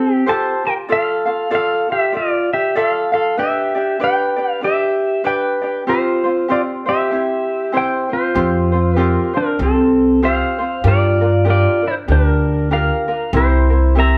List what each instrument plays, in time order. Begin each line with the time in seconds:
Already playing: pedal steel guitar C4 A4, ukulele F4 G4 A4 C5
0.14 pedal steel guitar G4
0.26 ukulele F4 G4 A4 C5, pedal steel guitar C5 A5
0.65 ukulele F4 G4, pedal steel guitar A#4 G5
0.88 ukulele F4 A4 D5 F5, pedal steel guitar F5
0.93 pedal steel guitar A4
1.25 ukulele F4 A4 F5
1.50 ukulele F4 A4 D5 F5
1.55 pedal steel guitar A4 F5
1.89 ukulele F4 A4, pedal steel guitar E5
1.93 pedal steel guitar G4
2.12 ukulele F4 A4 D5
2.17 pedal steel guitar F4 D5
2.53 pedal steel guitar G4 E5
2.75 ukulele F4 A4 D5 F5, pedal steel guitar A4 F5
3.12 ukulele F4 A4 F5, pedal steel guitar A4 F5
3.37 ukulele D4 G4 B4 D5, pedal steel guitar G4 E5
3.75 ukulele D4 G4 D5
4.00 ukulele D4 G4 B4 D5
4.04 pedal steel guitar B4 G5
4.36 ukulele D4 G4 D5
4.51 pedal steel guitar F5
4.61 ukulele D4 G4 B4 D5, pedal steel guitar G4 E5
5.24 ukulele D4 G4 B4 D5, pedal steel guitar B4 G5
5.62 ukulele D4 G4 D5
5.87 ukulele C4 F4 G4 C5, pedal steel guitar F4 C5
6.24 ukulele C4 F4 C5
6.48 ukulele C4 F4 G4 C5, pedal steel guitar F4 D5
6.86 ukulele C4 F4 C5, pedal steel guitar E5
6.90 pedal steel guitar G4
7.11 ukulele C4 E4 G4 C5
7.72 ukulele C4 E4 G4 C5
7.77 pedal steel guitar C5 G5
8.09 ukulele C4 C5
8.13 pedal steel guitar F4 C5
8.35 upright bass F2, ukulele C4 F4 G4 C5
8.72 ukulele C4 F4 C5
8.96 ukulele C4 F4 G4 C5, pedal steel guitar A#4
9.34 ukulele C4 F4 C5, pedal steel guitar D4 A#4
9.59 upright bass C2, ukulele C4 F4 G4 C5, pedal steel guitar C4 A4
10.22 ukulele C4 F4 G4 C5, pedal steel guitar C5 F5
10.58 ukulele C4 F4 C5
10.84 upright bass G2, ukulele D4 F4 G4 A#4, pedal steel guitar F4
10.88 pedal steel guitar D5
11.21 ukulele D4 F4 A#4
11.45 ukulele D4 F4 G4 A#4
11.50 pedal steel guitar F4 D5
11.82 ukulele D4 A#4
11.87 pedal steel guitar E4 C5
12.08 upright bass D2, ukulele D4 F4 G4 A#4
12.12 pedal steel guitar D4 A#4
12.71 ukulele D4 F4 G4 A#4, pedal steel guitar A#4 F5
13.08 ukulele D4 F4 A#4
13.33 upright bass C2, ukulele C4 E4 G4 A#4
13.37 pedal steel guitar E4 C5
13.70 ukulele C4 E4 A#4
13.95 ukulele C4 E4 G4 A#4, pedal steel guitar E5
14.00 pedal steel guitar A#5